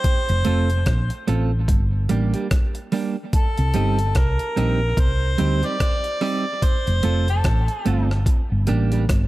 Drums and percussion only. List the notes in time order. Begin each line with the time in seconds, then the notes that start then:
0.04 kick, closed hi-hat
0.29 closed hi-hat
0.45 closed hi-hat
0.70 closed hi-hat
0.86 kick, cross-stick, closed hi-hat
1.10 closed hi-hat
1.28 closed hi-hat
1.68 kick, closed hi-hat
2.09 closed hi-hat
2.34 closed hi-hat
2.51 kick, cross-stick, closed hi-hat
2.75 closed hi-hat
2.92 open hi-hat
3.33 kick, closed hi-hat
3.58 closed hi-hat
3.74 closed hi-hat
3.99 closed hi-hat
4.15 kick, cross-stick, closed hi-hat
4.39 closed hi-hat
4.57 closed hi-hat
4.97 kick, closed hi-hat
5.38 closed hi-hat
5.63 closed hi-hat
5.80 kick, cross-stick, closed hi-hat
6.04 closed hi-hat
6.21 open hi-hat
6.62 kick, closed hi-hat
6.87 closed hi-hat
7.03 closed hi-hat
7.28 closed hi-hat
7.44 kick, cross-stick, closed hi-hat
7.68 closed hi-hat
7.86 closed hi-hat
8.11 cross-stick
8.26 kick, closed hi-hat
8.67 closed hi-hat
8.92 closed hi-hat
9.09 kick, cross-stick, closed hi-hat